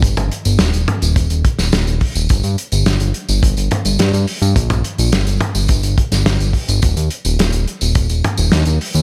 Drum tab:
HH |xxxxxxxxxxxxxxox|xxxxxxxxxxxxxxox|xxxxxxxxxxxxxxox|xxxxxxxxxxxxxxox|
TB |xx-xxx-xxx-xxx-x|xx-xxx-xxx-x-x-x|xx-x-x-xxx-x-x-x|xx-xxx-xxx-xxx-x|
SD |----o------oo---|----o-------o---|----o------oo---|----o-------o---|
T2 |-o----o---------|----------o-----|-o----o---------|----------o-----|
BD |o-------o-o---o-|o-------o-------|o-------o-o---o-|o-------o-------|